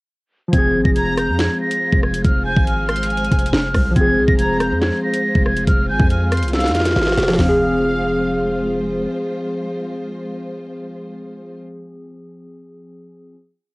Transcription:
0.48 synth keys F3
0.53 808-style bass F1, string section G#3 F4 C5, synth keys C4, flute G#6, kick, closed hi-hat
0.58 synth keys G#4
0.74 808-style bass G#1
0.85 808-style bass F1, flute A#6, kick
0.96 violin section A#5, flute G#6, closed hi-hat
1.17 flute G6, cross-stick, closed hi-hat
1.28 808-style bass F2
1.39 flute G#6, snare, closed hi-hat
1.61 flute A#6
1.71 closed hi-hat
1.92 808-style bass F1, kick
2.03 flute G#6, cross-stick
2.14 closed hi-hat
2.24 808-style bass F1, flute F6, kick, closed hi-hat
2.46 violin section G#5, flute G6
2.57 808-style bass G#1, kick
2.67 flute F6, closed hi-hat
2.89 violin section C6, cross-stick, closed hi-hat
2.96 closed hi-hat
3.03 closed hi-hat
3.10 violin section G#5, closed hi-hat
3.17 closed hi-hat
3.24 closed hi-hat
3.32 808-style bass F1, kick, closed hi-hat
3.39 closed hi-hat
3.46 closed hi-hat
3.53 808-style bass F1, flute F6, snare
3.74 808-style bass C2, kick, cross-stick, open hi-hat
3.91 synth keys F3
3.96 808-style bass F1, synth keys C4, string section F4, flute G#6, kick, closed hi-hat
4.01 synth keys G#4
4.17 808-style bass C2
4.28 808-style bass F1, flute A#6, kick
4.39 violin section A#5, flute G#6, closed hi-hat
4.60 flute G6, cross-stick, closed hi-hat
4.71 808-style bass F2
4.82 flute G#6, snare, closed hi-hat
5.03 flute A#6
5.14 closed hi-hat
5.35 808-style bass F1, kick
5.46 flute G#6, cross-stick
5.57 closed hi-hat
5.67 808-style bass F1, flute F6, kick, closed hi-hat
5.89 808-style bass G#1, violin section G#5, flute G6
5.99 808-style bass F2, kick
6.10 flute F6, closed hi-hat
6.32 violin section C6, cross-stick, closed hi-hat
6.37 closed hi-hat
6.42 808-style bass C2, closed hi-hat
6.48 closed hi-hat
6.53 violin section F5, flute E6, snare, closed hi-hat
6.58 snare, closed hi-hat
6.64 snare, closed hi-hat
6.69 808-style bass F2, snare
6.74 flute F6, snare, closed hi-hat
6.80 snare
6.85 snare, closed hi-hat
6.91 snare
6.96 808-style bass G#1, snare
7.01 snare
7.07 snare
7.12 snare
7.17 808-style bass F1, snare, closed hi-hat
7.23 snare
7.28 synth keys F3, snare
7.33 snare
7.39 808-style bass F1, string section G#3 F4 C5, synth keys C4, violin section F5, flute F6, snare, floor tom, open hi-hat
7.49 synth keys G#4

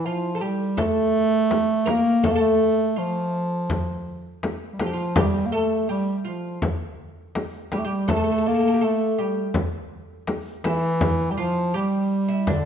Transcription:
0.06 bass clarinet F3, oud F4
0.35 oud A4
0.41 bass clarinet G3, oud G4
0.77 bass clarinet A3, oud A4, frame drum
1.51 frame drum
1.86 oud A#4, frame drum
1.90 bass clarinet A#3
2.23 bass clarinet A3, oud A4, frame drum
2.31 bass clarinet A#3
2.35 oud A4
2.40 bass clarinet A3
2.96 bass clarinet F3, oud F4
3.70 frame drum
4.43 frame drum
4.73 bass clarinet G3
4.79 bass clarinet F3, oud F4, frame drum
4.86 oud G4
4.93 oud F4
5.16 bass clarinet G3, oud G4, frame drum
5.46 bass clarinet A#3
5.52 bass clarinet A3, oud A4
5.89 bass clarinet G3, oud G4
6.19 bass clarinet G3
6.25 bass clarinet F3, oud F4
6.62 frame drum
7.35 frame drum
7.72 bass clarinet G3, oud G4, frame drum
7.79 bass clarinet A3
7.85 bass clarinet G3, oud G4
8.08 bass clarinet A3, oud A4, frame drum
8.16 oud A4
8.24 oud A4
8.31 oud A4
8.38 oud A4
8.46 bass clarinet A#3, oud A4
8.54 oud A4
8.60 oud A4
8.68 oud A4
8.73 oud G4
8.81 bass clarinet A3, oud A4
9.18 bass clarinet G3, oud G4
9.54 frame drum
10.27 frame drum
10.64 bass clarinet E3, oud E4, frame drum
11.01 frame drum
11.31 bass clarinet G3, oud G4
11.37 bass clarinet F3, oud F4
11.74 bass clarinet G3, oud G4
12.28 oud E4
12.47 bass clarinet D3, oud D4, frame drum

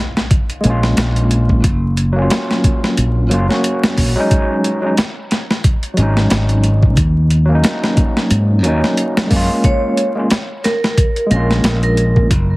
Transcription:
Already playing: impact
0.17 snare
0.31 kick, closed hi-hat
0.50 closed hi-hat
0.60 tine electric piano G#3 A#3, closed hi-hat
0.65 fingered electric bass A#1, tine electric piano C#4
0.70 tine electric piano F4
0.83 snare
0.97 fingered electric bass A#1, snare, closed hi-hat
1.16 closed hi-hat
1.31 closed hi-hat
1.49 kick
1.64 fingered electric bass F#1, kick, closed hi-hat
1.97 closed hi-hat
2.12 tine electric piano F#3 A#3
2.19 tine electric piano C#4 F4
2.30 snare, closed hi-hat
2.51 snare
2.64 kick, closed hi-hat
2.84 snare
2.97 fingered electric bass A#1, closed hi-hat
3.29 fingered electric bass F#1, tine electric piano F#3 A#3 C#4, closed hi-hat
3.34 tine electric piano F4
3.49 tine electric piano F#3 A#3 C#4, snare
3.54 tine electric piano F#4
3.64 closed hi-hat
3.83 snare
3.97 fingered electric bass A#1, kick, open hi-hat
4.16 tine electric piano F#3 G#3 C#4
4.20 tine electric piano D#4
4.31 kick, closed hi-hat
4.64 closed hi-hat
4.82 tine electric piano F#3 G#3 C#4
4.86 tine electric piano D#4
4.97 snare, closed hi-hat
5.31 snare, closed hi-hat
5.51 snare
5.64 kick, closed hi-hat
5.83 closed hi-hat
5.94 tine electric piano F#3 G#3, closed hi-hat
5.98 fingered electric bass G#1, tine electric piano C#4
6.03 tine electric piano D#4
6.17 snare
6.30 fingered electric bass G#1, snare, closed hi-hat
6.49 closed hi-hat
6.64 closed hi-hat
6.83 kick
6.97 fingered electric bass D#2, kick, closed hi-hat
7.30 closed hi-hat
7.46 tine electric piano F#3 A#3
7.52 tine electric piano C#4 D#4
7.64 snare, closed hi-hat
7.84 snare
7.97 kick, closed hi-hat
8.17 snare
8.31 fingered electric bass G#2, closed hi-hat
8.63 fingered electric bass D#2, tine electric piano F#3 A#3 C#4, closed hi-hat
8.67 tine electric piano D#4
8.84 snare
8.97 closed hi-hat
9.17 snare
9.27 fingered electric bass F#2, tine electric piano G#3 A#3, kick, open hi-hat
9.33 tine electric piano C#4 F4
9.64 vibraphone C#5, kick, closed hi-hat
9.97 closed hi-hat
10.15 tine electric piano G#3 A#3 C#4
10.19 tine electric piano F4
10.30 snare, closed hi-hat
10.64 vibraphone A#4, snare, closed hi-hat
10.84 snare
10.97 kick, closed hi-hat
11.16 closed hi-hat
11.27 tine electric piano G#3 A#3, closed hi-hat
11.31 fingered electric bass A#1, tine electric piano C#4, vibraphone A#4
11.36 tine electric piano F4
11.51 snare
11.64 fingered electric bass A#1, snare, closed hi-hat
11.83 vibraphone A#4, closed hi-hat
11.97 closed hi-hat
12.16 kick
12.31 fingered electric bass F#1, kick, closed hi-hat

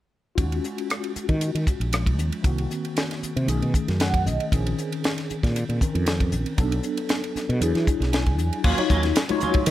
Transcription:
0.35 fretless electric bass D#2, tine electric piano G#3 C#4 F4 F#4, kick, hi-hat pedal, ride
0.52 ride
0.64 hi-hat pedal
0.78 ride
0.90 cross-stick, hi-hat pedal, ride
1.04 ride
1.16 muted fretless electric bass stroke, hi-hat pedal
1.29 fretless electric bass D#3, kick, ride
1.41 hi-hat pedal, ride
1.55 fretless electric bass D#3, ride
1.67 kick, hi-hat pedal
1.80 fretless electric bass A#1, ride
1.93 tine electric piano F3 G#3 C#4 F4, cross-stick, hi-hat pedal, ride
2.06 kick, ride
2.18 fretless electric bass D#2, hi-hat pedal
2.32 ride
2.43 fretless electric bass C2, tine electric piano D#3 A#3 C4 F#4, kick, hi-hat pedal, ride
2.58 ride
2.71 hi-hat pedal
2.85 ride
2.97 snare, hi-hat pedal, ride
3.11 snare, ride
3.23 muted fretless electric bass stroke, hi-hat pedal
3.36 fretless electric bass C3, ride
3.46 fretless electric bass B1, tine electric piano D#3 A3 C#4 G#4, hi-hat pedal, ride
3.62 fretless electric bass B2, ride
3.74 kick, hi-hat pedal
3.88 fretless electric bass F#2, snare, ride
4.00 tine electric piano F#5, snare, hi-hat pedal, ride
4.14 kick, ride
4.26 fretless electric bass B1, tine electric piano D#5, hi-hat pedal
4.40 ride
4.51 fretless electric bass A#1, tine electric piano D#3 C4 C#4 G#4, kick, hi-hat pedal, ride
4.67 ride
4.79 hi-hat pedal
4.92 ride
5.04 snare, hi-hat pedal, ride
5.18 snare, ride
5.30 muted fretless electric bass stroke, hi-hat pedal
5.43 fretless electric bass A#2, kick, snare, ride
5.56 hi-hat pedal, ride
5.69 fretless electric bass A#2, ride
5.81 tine electric piano D#3 C4 C#4 A#4, kick, hi-hat pedal
5.95 fretless electric bass F2, ride
6.06 snare, hi-hat pedal, ride
6.20 kick, ride
6.32 fretless electric bass A#1, hi-hat pedal
6.46 ride
6.57 fretless electric bass B1, tine electric piano F#3 B3 D4 A4, kick, hi-hat pedal, ride
6.72 ride
6.83 hi-hat pedal
6.97 ride
7.09 snare, hi-hat pedal, ride
7.24 ride
7.35 muted fretless electric bass stroke, snare, hi-hat pedal
7.49 fretless electric bass B2, ride
7.60 fretless electric bass E2, tine electric piano F#3 D4 E4 G#4, hi-hat pedal, ride
7.75 fretless electric bass E3, snare, ride
7.87 kick, hi-hat pedal
8.00 fretless electric bass B1, snare, ride
8.13 tine electric piano G#5, snare, hi-hat pedal, ride
8.26 kick, ride
8.38 fretless electric bass E2, hi-hat pedal
8.53 ride
8.64 fretless electric bass D#2, clean electric guitar F#3 A#3 C#4 F4, kick, crash
8.77 tine electric piano F#3 D#4 F4 C#5, muted clean electric guitar stroke, ride
8.90 fretless electric bass D#2, clean electric guitar F#3 A#3 C#4 F4, kick, hi-hat pedal
9.03 muted clean electric guitar stroke, snare, ride
9.16 snare, hi-hat pedal, ride
9.29 tine electric piano F#3 D#4 F4 C#5, muted clean electric guitar stroke, ride, high conga
9.40 clean electric guitar F#3 A#3 C#4 F4, hi-hat pedal, low conga
9.54 muted clean electric guitar stroke, kick, ride, high conga
9.66 fretless electric bass D#3, muted clean electric guitar stroke, hi-hat pedal, ride

